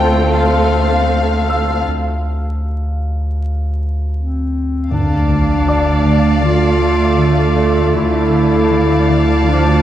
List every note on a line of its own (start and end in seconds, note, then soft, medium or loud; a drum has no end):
0.00 1.83 D2 medium
0.00 1.83 D2 soft
0.00 1.83 A3 soft
0.00 1.83 C4 soft
0.00 1.84 F4 soft
0.00 1.84 A4 soft
0.00 0.31 G5 medium
0.34 1.84 F5 medium
0.34 1.83 A5 soft
1.49 1.85 F5 soft
1.49 1.85 E6 soft
1.88 4.88 D2 medium
4.17 4.88 C4 soft
4.91 7.91 D2 soft
4.91 7.92 D2 medium
4.91 7.92 D2 soft
4.91 5.28 D3 soft
4.91 6.41 D4 soft
4.91 7.92 D5 soft
4.91 7.92 F5 soft
4.91 7.91 A5 soft
4.91 sub drop soft
5.29 5.66 D3 soft
5.67 6.03 D3 soft
5.67 7.92 D5 soft
5.67 7.92 D6 soft
6.04 6.41 D3 soft
6.42 6.79 D3 soft
6.42 9.43 A3 soft
6.42 7.93 F4 soft
6.80 7.16 D3 soft
7.17 7.93 D3 soft
7.56 9.82 D4 soft
7.94 9.82 D2 soft
7.94 9.82 D2 medium
7.94 9.82 D2 soft
7.94 8.30 D3 soft
7.94 9.50 E4 soft
7.94 9.82 D5 soft
7.94 9.82 F5 soft
7.94 9.82 A5 soft
8.31 8.68 D3 soft
8.70 9.07 D3 soft
9.08 9.45 D3 soft
9.46 9.82 D3 soft
9.46 9.82 F3 soft
9.46 9.82 D4 soft